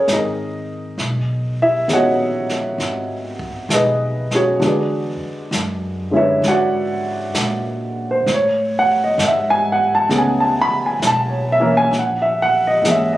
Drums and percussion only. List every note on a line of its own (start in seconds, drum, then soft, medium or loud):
0.08 snare medium
0.08 hi-hat pedal medium
0.98 brush sweep soft
0.98 snare soft
1.89 snare soft
1.89 hi-hat pedal soft
2.49 snare soft
2.80 brush sweep soft
2.80 snare soft
3.39 kick soft
3.70 snare medium
3.70 hi-hat pedal medium
4.31 snare soft
4.61 brush sweep soft
4.61 snare soft
5.52 snare soft
5.52 hi-hat pedal medium
6.43 brush sweep soft
6.43 snare soft
7.34 snare medium
7.34 hi-hat pedal medium
8.27 brush sweep soft
8.27 snare soft
9.19 snare soft
9.19 hi-hat pedal soft
10.10 brush sweep medium
10.10 snare soft
11.02 snare medium
11.02 hi-hat pedal medium
11.93 brush sweep soft
11.93 snare soft
12.85 snare medium
12.85 hi-hat pedal medium